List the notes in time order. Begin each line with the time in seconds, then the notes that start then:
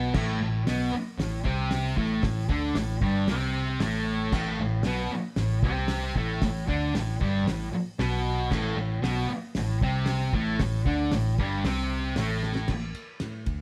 Already playing: B1 B2 B3
0.14 A1 A2 A3, kick, snare, crash
0.41 A1 A2
0.67 B1 B2 B3, snare, open hi-hat
0.93 muted distorted electric guitar stroke, muted picked electric bass stroke
1.18 A1 A2, snare, open hi-hat
1.45 C2 C3 C4, kick
1.71 snare, open hi-hat
1.96 A1 A2 A3, kick
2.23 A1 A2, kick, snare, open hi-hat
2.49 D2 D3 D4, kick
2.75 A1 A2, snare, open hi-hat
3.01 G1 G2 G3, kick
3.27 C2 C3 C4, snare, open hi-hat
3.80 A1 A2 A3, snare, open hi-hat
4.32 A1 A2 A3, kick, snare, crash
4.59 A1 A2
4.83 B1 B2 B3, snare, open hi-hat
5.10 muted picked electric bass stroke, muted distorted electric guitar stroke
5.36 A1 A2, snare, open hi-hat
5.63 C2 C3 C4, kick
5.88 snare, open hi-hat
6.16 A1 A2 A3, kick
6.42 A1 A2, kick, snare, open hi-hat
6.68 D2 D3 D4, kick
6.94 A1 A2, snare, open hi-hat
7.20 G1 G2 G3, kick
7.45 A1 A2, snare, open hi-hat
7.72 muted picked electric bass stroke, muted distorted electric guitar stroke
7.99 B1 B2 B3, snare, open hi-hat
8.51 A1 A2 A3, kick, snare, crash
8.76 A1 A2
9.02 B1 B2 B3, snare, open hi-hat
9.29 muted picked electric bass stroke, muted distorted electric guitar stroke
9.55 A1 A2, snare, open hi-hat
9.81 C2 C3 C4, kick
10.06 snare, open hi-hat
10.33 A1 A2 A3, kick
10.59 A1 A2, kick, snare, open hi-hat
10.86 D2 D3 D4, kick
11.11 A1 A2, snare, open hi-hat
11.39 G1 G2 G3, kick
11.64 C2 C3 C4, snare, open hi-hat
12.16 A1 A2 A3, snare, open hi-hat
12.43 snare
12.55 snare
12.68 A1, kick, snare, crash
12.95 muted picked electric bass stroke, ride
13.20 A2, snare, ride
13.46 D2, kick, ride